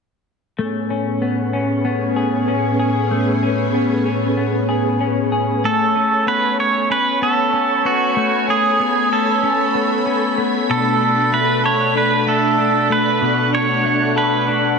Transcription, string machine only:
0, 0, Header, 1, 2, 480
1, 0, Start_track
1, 0, Key_signature, 3, "major"
1, 0, Tempo, 631579
1, 446, Time_signature, 4, 2, 24, 8
1, 11240, End_track
2, 0, Start_track
2, 0, Title_t, "String machine"
2, 0, Program_c, 0, 50
2, 445, Note_on_c, 0, 59, 61
2, 446, Note_on_c, 0, 45, 68
2, 447, Note_on_c, 0, 68, 59
2, 449, Note_on_c, 0, 61, 83
2, 4255, Note_off_c, 0, 45, 0
2, 4255, Note_off_c, 0, 59, 0
2, 4256, Note_off_c, 0, 68, 0
2, 4257, Note_off_c, 0, 61, 0
2, 4285, Note_on_c, 0, 73, 68
2, 4286, Note_on_c, 0, 57, 76
2, 4287, Note_on_c, 0, 80, 71
2, 4287, Note_on_c, 0, 83, 82
2, 8095, Note_off_c, 0, 73, 0
2, 8096, Note_off_c, 0, 80, 0
2, 8130, Note_on_c, 0, 78, 70
2, 8132, Note_on_c, 0, 62, 71
2, 10016, Note_off_c, 0, 83, 0
2, 10048, Note_on_c, 0, 85, 81
2, 11240, Note_off_c, 0, 57, 0
2, 11240, Note_off_c, 0, 62, 0
2, 11240, Note_off_c, 0, 78, 0
2, 11240, Note_off_c, 0, 85, 0
2, 11240, End_track
0, 0, End_of_file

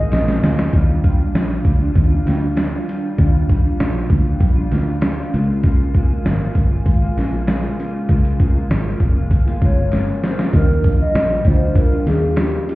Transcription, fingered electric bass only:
0, 0, Header, 1, 2, 480
1, 0, Start_track
1, 0, Key_signature, -3, "major"
1, 0, Tempo, 612870
1, 575, Time_signature, 4, 2, 24, 8
1, 9986, End_track
2, 0, Start_track
2, 0, Title_t, "Fingered electric bass"
2, 0, Program_c, 0, 33
2, 96, Note_on_c, 0, 34, 104
2, 287, Note_off_c, 0, 34, 0
2, 336, Note_on_c, 0, 38, 88
2, 527, Note_off_c, 0, 38, 0
2, 576, Note_on_c, 0, 39, 87
2, 959, Note_off_c, 0, 39, 0
2, 1054, Note_on_c, 0, 34, 88
2, 1246, Note_off_c, 0, 34, 0
2, 1292, Note_on_c, 0, 38, 86
2, 1485, Note_off_c, 0, 38, 0
2, 1530, Note_on_c, 0, 39, 86
2, 1724, Note_off_c, 0, 39, 0
2, 1770, Note_on_c, 0, 38, 85
2, 2155, Note_off_c, 0, 38, 0
2, 2493, Note_on_c, 0, 39, 80
2, 2878, Note_off_c, 0, 39, 0
2, 2976, Note_on_c, 0, 34, 86
2, 3167, Note_off_c, 0, 34, 0
2, 3210, Note_on_c, 0, 38, 78
2, 3403, Note_off_c, 0, 38, 0
2, 3451, Note_on_c, 0, 34, 90
2, 3644, Note_off_c, 0, 34, 0
2, 3698, Note_on_c, 0, 38, 78
2, 4080, Note_off_c, 0, 38, 0
2, 4182, Note_on_c, 0, 37, 88
2, 4898, Note_on_c, 0, 32, 80
2, 4909, Note_off_c, 0, 37, 0
2, 5088, Note_off_c, 0, 32, 0
2, 5133, Note_on_c, 0, 31, 69
2, 5325, Note_off_c, 0, 31, 0
2, 5373, Note_on_c, 0, 32, 88
2, 5565, Note_off_c, 0, 32, 0
2, 5618, Note_on_c, 0, 34, 75
2, 6000, Note_off_c, 0, 34, 0
2, 6338, Note_on_c, 0, 37, 84
2, 6720, Note_off_c, 0, 37, 0
2, 6816, Note_on_c, 0, 32, 83
2, 7007, Note_off_c, 0, 32, 0
2, 7051, Note_on_c, 0, 29, 74
2, 7290, Note_off_c, 0, 29, 0
2, 7290, Note_on_c, 0, 32, 99
2, 7483, Note_off_c, 0, 32, 0
2, 7532, Note_on_c, 0, 31, 79
2, 7916, Note_off_c, 0, 31, 0
2, 8251, Note_on_c, 0, 39, 102
2, 8636, Note_off_c, 0, 39, 0
2, 8730, Note_on_c, 0, 34, 86
2, 8923, Note_off_c, 0, 34, 0
2, 8968, Note_on_c, 0, 38, 85
2, 9257, Note_off_c, 0, 38, 0
2, 9449, Note_on_c, 0, 39, 90
2, 9834, Note_off_c, 0, 39, 0
2, 9986, End_track
0, 0, End_of_file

